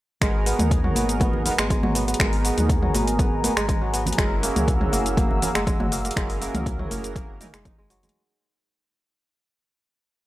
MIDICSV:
0, 0, Header, 1, 6, 480
1, 0, Start_track
1, 0, Key_signature, 5, "minor"
1, 0, Tempo, 495868
1, 209, Time_signature, 4, 2, 24, 8
1, 9939, End_track
2, 0, Start_track
2, 0, Title_t, "Analog synth pad"
2, 0, Program_c, 0, 89
2, 209, Note_on_c, 0, 59, 75
2, 210, Note_on_c, 0, 68, 83
2, 210, Note_on_c, 0, 78, 74
2, 211, Note_on_c, 0, 82, 94
2, 2110, Note_off_c, 0, 78, 0
2, 2131, Note_on_c, 0, 80, 78
2, 4011, Note_off_c, 0, 59, 0
2, 4031, Note_off_c, 0, 80, 0
2, 4052, Note_on_c, 0, 78, 77
2, 4053, Note_on_c, 0, 88, 80
2, 7851, Note_off_c, 0, 68, 0
2, 7851, Note_off_c, 0, 82, 0
2, 7852, Note_off_c, 0, 78, 0
2, 7852, Note_off_c, 0, 88, 0
2, 9939, End_track
3, 0, Start_track
3, 0, Title_t, "Analog polysynth"
3, 0, Program_c, 1, 90
3, 210, Note_on_c, 1, 63, 85
3, 210, Note_on_c, 1, 68, 86
3, 211, Note_on_c, 1, 59, 89
3, 211, Note_on_c, 1, 66, 89
3, 211, Note_on_c, 1, 70, 107
3, 1382, Note_off_c, 1, 59, 0
3, 1382, Note_off_c, 1, 63, 0
3, 1382, Note_off_c, 1, 66, 0
3, 1382, Note_off_c, 1, 68, 0
3, 1382, Note_off_c, 1, 70, 0
3, 1409, Note_on_c, 1, 59, 102
3, 1409, Note_on_c, 1, 68, 93
3, 1409, Note_on_c, 1, 70, 115
3, 1410, Note_on_c, 1, 63, 97
3, 1410, Note_on_c, 1, 66, 92
3, 1471, Note_off_c, 1, 68, 0
3, 1472, Note_off_c, 1, 59, 0
3, 1472, Note_off_c, 1, 63, 0
3, 1472, Note_off_c, 1, 66, 0
3, 1472, Note_off_c, 1, 70, 0
3, 2129, Note_on_c, 1, 70, 100
3, 2130, Note_on_c, 1, 59, 95
3, 2130, Note_on_c, 1, 63, 88
3, 2130, Note_on_c, 1, 68, 85
3, 2131, Note_on_c, 1, 66, 85
3, 3302, Note_off_c, 1, 59, 0
3, 3302, Note_off_c, 1, 63, 0
3, 3302, Note_off_c, 1, 66, 0
3, 3302, Note_off_c, 1, 68, 0
3, 3302, Note_off_c, 1, 70, 0
3, 3329, Note_on_c, 1, 68, 95
3, 3330, Note_on_c, 1, 59, 104
3, 3330, Note_on_c, 1, 63, 97
3, 3330, Note_on_c, 1, 66, 99
3, 3330, Note_on_c, 1, 70, 118
3, 3392, Note_off_c, 1, 59, 0
3, 3392, Note_off_c, 1, 63, 0
3, 3392, Note_off_c, 1, 66, 0
3, 3392, Note_off_c, 1, 68, 0
3, 3392, Note_off_c, 1, 70, 0
3, 4049, Note_on_c, 1, 66, 87
3, 4049, Note_on_c, 1, 68, 86
3, 4049, Note_on_c, 1, 70, 99
3, 4050, Note_on_c, 1, 61, 91
3, 4050, Note_on_c, 1, 64, 87
3, 5221, Note_off_c, 1, 66, 0
3, 5221, Note_off_c, 1, 70, 0
3, 5222, Note_off_c, 1, 61, 0
3, 5222, Note_off_c, 1, 64, 0
3, 5222, Note_off_c, 1, 68, 0
3, 5249, Note_on_c, 1, 61, 101
3, 5249, Note_on_c, 1, 64, 90
3, 5249, Note_on_c, 1, 66, 97
3, 5249, Note_on_c, 1, 68, 97
3, 5249, Note_on_c, 1, 70, 115
3, 5311, Note_off_c, 1, 66, 0
3, 5311, Note_off_c, 1, 70, 0
3, 5312, Note_off_c, 1, 61, 0
3, 5312, Note_off_c, 1, 64, 0
3, 5312, Note_off_c, 1, 68, 0
3, 5968, Note_on_c, 1, 61, 90
3, 5968, Note_on_c, 1, 64, 86
3, 5968, Note_on_c, 1, 66, 87
3, 5968, Note_on_c, 1, 68, 87
3, 5968, Note_on_c, 1, 70, 106
3, 7141, Note_off_c, 1, 61, 0
3, 7141, Note_off_c, 1, 64, 0
3, 7141, Note_off_c, 1, 66, 0
3, 7141, Note_off_c, 1, 68, 0
3, 7141, Note_off_c, 1, 70, 0
3, 7168, Note_on_c, 1, 61, 104
3, 7168, Note_on_c, 1, 64, 96
3, 7169, Note_on_c, 1, 66, 98
3, 7169, Note_on_c, 1, 68, 92
3, 7169, Note_on_c, 1, 70, 118
3, 7231, Note_off_c, 1, 61, 0
3, 7231, Note_off_c, 1, 64, 0
3, 7231, Note_off_c, 1, 66, 0
3, 7231, Note_off_c, 1, 68, 0
3, 7232, Note_off_c, 1, 70, 0
3, 9939, End_track
4, 0, Start_track
4, 0, Title_t, "Kora"
4, 0, Program_c, 2, 46
4, 209, Note_on_c, 2, 56, 98
4, 449, Note_on_c, 2, 59, 78
4, 813, Note_on_c, 2, 54, 77
4, 925, Note_off_c, 2, 59, 0
4, 929, Note_on_c, 2, 59, 75
4, 1165, Note_off_c, 2, 59, 0
4, 1169, Note_on_c, 2, 59, 87
4, 1405, Note_off_c, 2, 59, 0
4, 1408, Note_on_c, 2, 59, 74
4, 1522, Note_off_c, 2, 56, 0
4, 1534, Note_on_c, 2, 56, 106
4, 1636, Note_off_c, 2, 56, 0
4, 1648, Note_on_c, 2, 56, 99
4, 1760, Note_off_c, 2, 54, 0
4, 1772, Note_on_c, 2, 54, 79
4, 1886, Note_off_c, 2, 59, 0
4, 1890, Note_on_c, 2, 59, 79
4, 2008, Note_off_c, 2, 59, 0
4, 2012, Note_on_c, 2, 59, 74
4, 2118, Note_off_c, 2, 56, 0
4, 2130, Note_on_c, 2, 56, 99
4, 2366, Note_off_c, 2, 59, 0
4, 2370, Note_on_c, 2, 59, 76
4, 2722, Note_off_c, 2, 54, 0
4, 2733, Note_on_c, 2, 54, 76
4, 2844, Note_off_c, 2, 59, 0
4, 2848, Note_on_c, 2, 59, 75
4, 3085, Note_off_c, 2, 59, 0
4, 3089, Note_on_c, 2, 59, 85
4, 3325, Note_off_c, 2, 59, 0
4, 3329, Note_on_c, 2, 59, 76
4, 3442, Note_off_c, 2, 56, 0
4, 3453, Note_on_c, 2, 56, 101
4, 3558, Note_off_c, 2, 56, 0
4, 3569, Note_on_c, 2, 56, 96
4, 3681, Note_off_c, 2, 54, 0
4, 3693, Note_on_c, 2, 54, 79
4, 3803, Note_off_c, 2, 59, 0
4, 3807, Note_on_c, 2, 59, 80
4, 3929, Note_off_c, 2, 59, 0
4, 3933, Note_on_c, 2, 59, 77
4, 4036, Note_off_c, 2, 56, 0
4, 4048, Note_on_c, 2, 56, 100
4, 4097, Note_off_c, 2, 54, 0
4, 4288, Note_on_c, 2, 58, 83
4, 4346, Note_off_c, 2, 59, 0
4, 4653, Note_on_c, 2, 54, 80
4, 4764, Note_off_c, 2, 58, 0
4, 4768, Note_on_c, 2, 58, 79
4, 5004, Note_off_c, 2, 58, 0
4, 5008, Note_on_c, 2, 58, 88
4, 5246, Note_off_c, 2, 58, 0
4, 5250, Note_on_c, 2, 58, 78
4, 5361, Note_off_c, 2, 56, 0
4, 5373, Note_on_c, 2, 56, 100
4, 5476, Note_off_c, 2, 56, 0
4, 5488, Note_on_c, 2, 56, 101
4, 5602, Note_off_c, 2, 54, 0
4, 5613, Note_on_c, 2, 54, 77
4, 5725, Note_off_c, 2, 58, 0
4, 5729, Note_on_c, 2, 58, 79
4, 5850, Note_off_c, 2, 58, 0
4, 5854, Note_on_c, 2, 58, 78
4, 5956, Note_off_c, 2, 56, 0
4, 5967, Note_on_c, 2, 56, 100
4, 6204, Note_off_c, 2, 58, 0
4, 6208, Note_on_c, 2, 58, 82
4, 6561, Note_off_c, 2, 54, 0
4, 6573, Note_on_c, 2, 54, 82
4, 6685, Note_off_c, 2, 58, 0
4, 6689, Note_on_c, 2, 58, 77
4, 6925, Note_off_c, 2, 58, 0
4, 6928, Note_on_c, 2, 58, 84
4, 7169, Note_on_c, 2, 63, 80
4, 7281, Note_off_c, 2, 56, 0
4, 7293, Note_on_c, 2, 56, 80
4, 7404, Note_off_c, 2, 63, 0
4, 7408, Note_on_c, 2, 63, 82
4, 7523, Note_off_c, 2, 56, 0
4, 7535, Note_on_c, 2, 56, 75
4, 7637, Note_off_c, 2, 54, 0
4, 7649, Note_on_c, 2, 54, 107
4, 7764, Note_off_c, 2, 56, 0
4, 7776, Note_on_c, 2, 56, 80
4, 7937, Note_off_c, 2, 54, 0
4, 7937, Note_off_c, 2, 56, 0
4, 8796, Note_off_c, 2, 58, 0
4, 8978, Note_off_c, 2, 63, 0
4, 9939, End_track
5, 0, Start_track
5, 0, Title_t, "Sub bass"
5, 0, Program_c, 3, 38
5, 208, Note_on_c, 3, 32, 104
5, 517, Note_off_c, 3, 32, 0
5, 573, Note_on_c, 3, 39, 102
5, 877, Note_off_c, 3, 39, 0
5, 926, Note_on_c, 3, 32, 81
5, 1236, Note_off_c, 3, 32, 0
5, 1293, Note_on_c, 3, 32, 91
5, 1463, Note_off_c, 3, 32, 0
5, 1535, Note_on_c, 3, 32, 78
5, 1704, Note_off_c, 3, 32, 0
5, 1775, Note_on_c, 3, 32, 90
5, 2078, Note_off_c, 3, 32, 0
5, 2128, Note_on_c, 3, 32, 102
5, 2437, Note_off_c, 3, 32, 0
5, 2494, Note_on_c, 3, 39, 106
5, 2797, Note_off_c, 3, 39, 0
5, 2848, Note_on_c, 3, 32, 85
5, 3157, Note_off_c, 3, 32, 0
5, 3213, Note_on_c, 3, 32, 97
5, 3383, Note_off_c, 3, 32, 0
5, 3453, Note_on_c, 3, 32, 79
5, 3623, Note_off_c, 3, 32, 0
5, 3694, Note_on_c, 3, 32, 89
5, 3997, Note_off_c, 3, 32, 0
5, 4048, Note_on_c, 3, 30, 94
5, 4357, Note_off_c, 3, 30, 0
5, 4413, Note_on_c, 3, 37, 103
5, 4717, Note_off_c, 3, 37, 0
5, 4769, Note_on_c, 3, 30, 85
5, 5078, Note_off_c, 3, 30, 0
5, 5134, Note_on_c, 3, 30, 91
5, 5304, Note_off_c, 3, 30, 0
5, 5374, Note_on_c, 3, 30, 82
5, 5544, Note_off_c, 3, 30, 0
5, 5612, Note_on_c, 3, 30, 92
5, 5916, Note_off_c, 3, 30, 0
5, 5969, Note_on_c, 3, 30, 99
5, 6278, Note_off_c, 3, 30, 0
5, 6334, Note_on_c, 3, 37, 110
5, 6637, Note_off_c, 3, 37, 0
5, 6687, Note_on_c, 3, 30, 83
5, 6997, Note_off_c, 3, 30, 0
5, 7054, Note_on_c, 3, 30, 93
5, 7224, Note_off_c, 3, 30, 0
5, 7295, Note_on_c, 3, 30, 83
5, 7464, Note_off_c, 3, 30, 0
5, 7535, Note_on_c, 3, 30, 101
5, 7838, Note_off_c, 3, 30, 0
5, 9939, End_track
6, 0, Start_track
6, 0, Title_t, "Drums"
6, 208, Note_on_c, 9, 36, 121
6, 210, Note_on_c, 9, 26, 99
6, 210, Note_on_c, 9, 42, 57
6, 216, Note_on_c, 9, 69, 42
6, 305, Note_off_c, 9, 36, 0
6, 306, Note_off_c, 9, 26, 0
6, 306, Note_off_c, 9, 42, 0
6, 312, Note_off_c, 9, 69, 0
6, 449, Note_on_c, 9, 46, 90
6, 455, Note_on_c, 9, 69, 94
6, 546, Note_off_c, 9, 46, 0
6, 552, Note_off_c, 9, 69, 0
6, 571, Note_on_c, 9, 63, 116
6, 575, Note_on_c, 9, 42, 45
6, 575, Note_on_c, 9, 45, 76
6, 582, Note_on_c, 9, 69, 53
6, 668, Note_off_c, 9, 63, 0
6, 672, Note_off_c, 9, 42, 0
6, 672, Note_off_c, 9, 45, 0
6, 678, Note_off_c, 9, 69, 0
6, 689, Note_on_c, 9, 36, 106
6, 691, Note_on_c, 9, 42, 56
6, 697, Note_on_c, 9, 69, 41
6, 785, Note_off_c, 9, 36, 0
6, 788, Note_off_c, 9, 42, 0
6, 794, Note_off_c, 9, 69, 0
6, 814, Note_on_c, 9, 45, 75
6, 911, Note_off_c, 9, 45, 0
6, 924, Note_on_c, 9, 63, 96
6, 929, Note_on_c, 9, 46, 94
6, 936, Note_on_c, 9, 69, 87
6, 1021, Note_off_c, 9, 63, 0
6, 1026, Note_off_c, 9, 46, 0
6, 1032, Note_off_c, 9, 69, 0
6, 1056, Note_on_c, 9, 42, 44
6, 1062, Note_on_c, 9, 69, 52
6, 1152, Note_off_c, 9, 42, 0
6, 1159, Note_off_c, 9, 69, 0
6, 1160, Note_on_c, 9, 63, 102
6, 1168, Note_on_c, 9, 36, 123
6, 1170, Note_on_c, 9, 42, 54
6, 1176, Note_on_c, 9, 69, 43
6, 1257, Note_off_c, 9, 63, 0
6, 1265, Note_off_c, 9, 36, 0
6, 1267, Note_off_c, 9, 42, 0
6, 1273, Note_off_c, 9, 69, 0
6, 1291, Note_on_c, 9, 64, 102
6, 1388, Note_off_c, 9, 64, 0
6, 1410, Note_on_c, 9, 46, 97
6, 1411, Note_on_c, 9, 64, 88
6, 1416, Note_on_c, 9, 69, 93
6, 1506, Note_off_c, 9, 46, 0
6, 1508, Note_off_c, 9, 64, 0
6, 1512, Note_off_c, 9, 69, 0
6, 1534, Note_on_c, 9, 26, 96
6, 1534, Note_on_c, 9, 42, 45
6, 1538, Note_on_c, 9, 63, 64
6, 1540, Note_on_c, 9, 69, 52
6, 1631, Note_off_c, 9, 26, 0
6, 1631, Note_off_c, 9, 42, 0
6, 1634, Note_off_c, 9, 63, 0
6, 1637, Note_off_c, 9, 69, 0
6, 1649, Note_on_c, 9, 36, 105
6, 1650, Note_on_c, 9, 42, 54
6, 1651, Note_on_c, 9, 64, 89
6, 1656, Note_on_c, 9, 69, 39
6, 1745, Note_off_c, 9, 36, 0
6, 1747, Note_off_c, 9, 42, 0
6, 1748, Note_off_c, 9, 64, 0
6, 1753, Note_off_c, 9, 69, 0
6, 1774, Note_on_c, 9, 63, 109
6, 1775, Note_on_c, 9, 45, 80
6, 1870, Note_off_c, 9, 63, 0
6, 1872, Note_off_c, 9, 45, 0
6, 1890, Note_on_c, 9, 46, 97
6, 1896, Note_on_c, 9, 69, 98
6, 1986, Note_off_c, 9, 46, 0
6, 1992, Note_off_c, 9, 69, 0
6, 2014, Note_on_c, 9, 42, 43
6, 2020, Note_on_c, 9, 69, 57
6, 2072, Note_off_c, 9, 42, 0
6, 2072, Note_on_c, 9, 42, 59
6, 2117, Note_off_c, 9, 69, 0
6, 2128, Note_on_c, 9, 36, 127
6, 2129, Note_off_c, 9, 42, 0
6, 2129, Note_on_c, 9, 26, 98
6, 2129, Note_on_c, 9, 42, 57
6, 2135, Note_on_c, 9, 69, 43
6, 2225, Note_off_c, 9, 36, 0
6, 2226, Note_off_c, 9, 26, 0
6, 2226, Note_off_c, 9, 42, 0
6, 2232, Note_off_c, 9, 69, 0
6, 2254, Note_on_c, 9, 46, 53
6, 2351, Note_off_c, 9, 46, 0
6, 2369, Note_on_c, 9, 46, 91
6, 2375, Note_on_c, 9, 69, 96
6, 2465, Note_off_c, 9, 46, 0
6, 2472, Note_off_c, 9, 69, 0
6, 2494, Note_on_c, 9, 42, 46
6, 2494, Note_on_c, 9, 45, 76
6, 2495, Note_on_c, 9, 63, 121
6, 2500, Note_on_c, 9, 69, 52
6, 2591, Note_off_c, 9, 42, 0
6, 2591, Note_off_c, 9, 45, 0
6, 2592, Note_off_c, 9, 63, 0
6, 2597, Note_off_c, 9, 69, 0
6, 2608, Note_on_c, 9, 36, 108
6, 2610, Note_on_c, 9, 42, 53
6, 2616, Note_on_c, 9, 69, 43
6, 2705, Note_off_c, 9, 36, 0
6, 2707, Note_off_c, 9, 42, 0
6, 2713, Note_off_c, 9, 69, 0
6, 2735, Note_on_c, 9, 45, 79
6, 2832, Note_off_c, 9, 45, 0
6, 2851, Note_on_c, 9, 46, 92
6, 2857, Note_on_c, 9, 69, 95
6, 2858, Note_on_c, 9, 63, 101
6, 2948, Note_off_c, 9, 46, 0
6, 2954, Note_off_c, 9, 69, 0
6, 2955, Note_off_c, 9, 63, 0
6, 2976, Note_on_c, 9, 42, 42
6, 2982, Note_on_c, 9, 69, 56
6, 3073, Note_off_c, 9, 42, 0
6, 3079, Note_off_c, 9, 69, 0
6, 3089, Note_on_c, 9, 36, 127
6, 3091, Note_on_c, 9, 42, 55
6, 3097, Note_on_c, 9, 69, 42
6, 3186, Note_off_c, 9, 36, 0
6, 3188, Note_off_c, 9, 42, 0
6, 3194, Note_off_c, 9, 69, 0
6, 3329, Note_on_c, 9, 63, 93
6, 3330, Note_on_c, 9, 46, 92
6, 3336, Note_on_c, 9, 69, 100
6, 3425, Note_off_c, 9, 63, 0
6, 3427, Note_off_c, 9, 46, 0
6, 3433, Note_off_c, 9, 69, 0
6, 3455, Note_on_c, 9, 26, 96
6, 3455, Note_on_c, 9, 42, 42
6, 3461, Note_on_c, 9, 69, 55
6, 3552, Note_off_c, 9, 26, 0
6, 3552, Note_off_c, 9, 42, 0
6, 3558, Note_off_c, 9, 69, 0
6, 3569, Note_on_c, 9, 36, 110
6, 3570, Note_on_c, 9, 64, 100
6, 3571, Note_on_c, 9, 42, 57
6, 3578, Note_on_c, 9, 69, 40
6, 3666, Note_off_c, 9, 36, 0
6, 3666, Note_off_c, 9, 64, 0
6, 3668, Note_off_c, 9, 42, 0
6, 3674, Note_off_c, 9, 69, 0
6, 3810, Note_on_c, 9, 46, 90
6, 3817, Note_on_c, 9, 69, 98
6, 3907, Note_off_c, 9, 46, 0
6, 3913, Note_off_c, 9, 69, 0
6, 3932, Note_on_c, 9, 63, 60
6, 3932, Note_on_c, 9, 64, 96
6, 3936, Note_on_c, 9, 42, 41
6, 3942, Note_on_c, 9, 69, 57
6, 3993, Note_off_c, 9, 42, 0
6, 3993, Note_on_c, 9, 42, 56
6, 4029, Note_off_c, 9, 63, 0
6, 4029, Note_off_c, 9, 64, 0
6, 4039, Note_off_c, 9, 69, 0
6, 4049, Note_on_c, 9, 36, 124
6, 4052, Note_off_c, 9, 42, 0
6, 4052, Note_on_c, 9, 26, 95
6, 4052, Note_on_c, 9, 42, 53
6, 4058, Note_on_c, 9, 69, 43
6, 4145, Note_off_c, 9, 36, 0
6, 4148, Note_off_c, 9, 26, 0
6, 4148, Note_off_c, 9, 42, 0
6, 4155, Note_off_c, 9, 69, 0
6, 4290, Note_on_c, 9, 46, 91
6, 4296, Note_on_c, 9, 69, 99
6, 4387, Note_off_c, 9, 46, 0
6, 4393, Note_off_c, 9, 69, 0
6, 4416, Note_on_c, 9, 42, 44
6, 4416, Note_on_c, 9, 45, 78
6, 4418, Note_on_c, 9, 63, 105
6, 4422, Note_on_c, 9, 69, 56
6, 4513, Note_off_c, 9, 42, 0
6, 4513, Note_off_c, 9, 45, 0
6, 4515, Note_off_c, 9, 63, 0
6, 4519, Note_off_c, 9, 69, 0
6, 4528, Note_on_c, 9, 36, 110
6, 4531, Note_on_c, 9, 42, 57
6, 4538, Note_on_c, 9, 69, 42
6, 4625, Note_off_c, 9, 36, 0
6, 4628, Note_off_c, 9, 42, 0
6, 4634, Note_off_c, 9, 69, 0
6, 4656, Note_on_c, 9, 45, 80
6, 4753, Note_off_c, 9, 45, 0
6, 4766, Note_on_c, 9, 63, 88
6, 4772, Note_on_c, 9, 46, 88
6, 4778, Note_on_c, 9, 69, 100
6, 4863, Note_off_c, 9, 63, 0
6, 4869, Note_off_c, 9, 46, 0
6, 4875, Note_off_c, 9, 69, 0
6, 4897, Note_on_c, 9, 42, 43
6, 4903, Note_on_c, 9, 69, 55
6, 4994, Note_off_c, 9, 42, 0
6, 5000, Note_off_c, 9, 69, 0
6, 5007, Note_on_c, 9, 63, 104
6, 5008, Note_on_c, 9, 36, 127
6, 5011, Note_on_c, 9, 42, 53
6, 5017, Note_on_c, 9, 69, 45
6, 5104, Note_off_c, 9, 63, 0
6, 5105, Note_off_c, 9, 36, 0
6, 5108, Note_off_c, 9, 42, 0
6, 5114, Note_off_c, 9, 69, 0
6, 5136, Note_on_c, 9, 64, 96
6, 5233, Note_off_c, 9, 64, 0
6, 5250, Note_on_c, 9, 46, 88
6, 5253, Note_on_c, 9, 64, 96
6, 5256, Note_on_c, 9, 69, 101
6, 5346, Note_off_c, 9, 46, 0
6, 5349, Note_off_c, 9, 64, 0
6, 5353, Note_off_c, 9, 69, 0
6, 5372, Note_on_c, 9, 63, 70
6, 5375, Note_on_c, 9, 26, 96
6, 5375, Note_on_c, 9, 42, 41
6, 5381, Note_on_c, 9, 69, 55
6, 5469, Note_off_c, 9, 63, 0
6, 5472, Note_off_c, 9, 26, 0
6, 5472, Note_off_c, 9, 42, 0
6, 5478, Note_off_c, 9, 69, 0
6, 5488, Note_on_c, 9, 36, 110
6, 5490, Note_on_c, 9, 42, 55
6, 5496, Note_on_c, 9, 64, 101
6, 5496, Note_on_c, 9, 69, 44
6, 5585, Note_off_c, 9, 36, 0
6, 5587, Note_off_c, 9, 42, 0
6, 5593, Note_off_c, 9, 64, 0
6, 5593, Note_off_c, 9, 69, 0
6, 5615, Note_on_c, 9, 45, 88
6, 5616, Note_on_c, 9, 63, 117
6, 5711, Note_off_c, 9, 45, 0
6, 5713, Note_off_c, 9, 63, 0
6, 5730, Note_on_c, 9, 46, 95
6, 5736, Note_on_c, 9, 69, 105
6, 5827, Note_off_c, 9, 46, 0
6, 5833, Note_off_c, 9, 69, 0
6, 5855, Note_on_c, 9, 42, 41
6, 5861, Note_on_c, 9, 69, 58
6, 5913, Note_off_c, 9, 42, 0
6, 5913, Note_on_c, 9, 42, 55
6, 5958, Note_off_c, 9, 69, 0
6, 5969, Note_on_c, 9, 36, 123
6, 5971, Note_off_c, 9, 42, 0
6, 5971, Note_on_c, 9, 26, 92
6, 5971, Note_on_c, 9, 42, 57
6, 5977, Note_on_c, 9, 69, 41
6, 6065, Note_off_c, 9, 36, 0
6, 6068, Note_off_c, 9, 26, 0
6, 6068, Note_off_c, 9, 42, 0
6, 6074, Note_off_c, 9, 69, 0
6, 6095, Note_on_c, 9, 46, 52
6, 6192, Note_off_c, 9, 46, 0
6, 6211, Note_on_c, 9, 46, 85
6, 6217, Note_on_c, 9, 69, 95
6, 6307, Note_off_c, 9, 46, 0
6, 6314, Note_off_c, 9, 69, 0
6, 6333, Note_on_c, 9, 64, 79
6, 6336, Note_on_c, 9, 63, 109
6, 6337, Note_on_c, 9, 42, 45
6, 6337, Note_on_c, 9, 45, 84
6, 6343, Note_on_c, 9, 69, 57
6, 6430, Note_off_c, 9, 64, 0
6, 6432, Note_off_c, 9, 63, 0
6, 6434, Note_off_c, 9, 42, 0
6, 6434, Note_off_c, 9, 45, 0
6, 6440, Note_off_c, 9, 69, 0
6, 6448, Note_on_c, 9, 36, 106
6, 6452, Note_on_c, 9, 42, 55
6, 6458, Note_on_c, 9, 69, 42
6, 6545, Note_off_c, 9, 36, 0
6, 6549, Note_off_c, 9, 42, 0
6, 6555, Note_off_c, 9, 69, 0
6, 6575, Note_on_c, 9, 45, 80
6, 6672, Note_off_c, 9, 45, 0
6, 6688, Note_on_c, 9, 63, 104
6, 6690, Note_on_c, 9, 46, 87
6, 6696, Note_on_c, 9, 69, 94
6, 6785, Note_off_c, 9, 63, 0
6, 6787, Note_off_c, 9, 46, 0
6, 6793, Note_off_c, 9, 69, 0
6, 6816, Note_on_c, 9, 42, 44
6, 6822, Note_on_c, 9, 69, 55
6, 6913, Note_off_c, 9, 42, 0
6, 6919, Note_off_c, 9, 69, 0
6, 6928, Note_on_c, 9, 36, 127
6, 6932, Note_on_c, 9, 42, 57
6, 6938, Note_on_c, 9, 69, 43
6, 7025, Note_off_c, 9, 36, 0
6, 7028, Note_off_c, 9, 42, 0
6, 7035, Note_off_c, 9, 69, 0
6, 7166, Note_on_c, 9, 63, 86
6, 7170, Note_on_c, 9, 45, 85
6, 7170, Note_on_c, 9, 46, 86
6, 7176, Note_on_c, 9, 69, 99
6, 7263, Note_off_c, 9, 63, 0
6, 7267, Note_off_c, 9, 45, 0
6, 7267, Note_off_c, 9, 46, 0
6, 7273, Note_off_c, 9, 69, 0
6, 7296, Note_on_c, 9, 26, 93
6, 7296, Note_on_c, 9, 42, 45
6, 7302, Note_on_c, 9, 69, 58
6, 7393, Note_off_c, 9, 26, 0
6, 7393, Note_off_c, 9, 42, 0
6, 7399, Note_off_c, 9, 69, 0
6, 7408, Note_on_c, 9, 36, 111
6, 7409, Note_on_c, 9, 42, 56
6, 7415, Note_on_c, 9, 69, 42
6, 7416, Note_on_c, 9, 64, 95
6, 7505, Note_off_c, 9, 36, 0
6, 7506, Note_off_c, 9, 42, 0
6, 7512, Note_off_c, 9, 64, 0
6, 7512, Note_off_c, 9, 69, 0
6, 7649, Note_on_c, 9, 46, 93
6, 7656, Note_on_c, 9, 69, 99
6, 7746, Note_off_c, 9, 46, 0
6, 7752, Note_off_c, 9, 69, 0
6, 7773, Note_on_c, 9, 63, 65
6, 7774, Note_on_c, 9, 42, 43
6, 7777, Note_on_c, 9, 64, 90
6, 7780, Note_on_c, 9, 69, 57
6, 7831, Note_off_c, 9, 42, 0
6, 7831, Note_on_c, 9, 42, 57
6, 7870, Note_off_c, 9, 63, 0
6, 7874, Note_off_c, 9, 64, 0
6, 7877, Note_off_c, 9, 69, 0
6, 7928, Note_off_c, 9, 42, 0
6, 9939, End_track
0, 0, End_of_file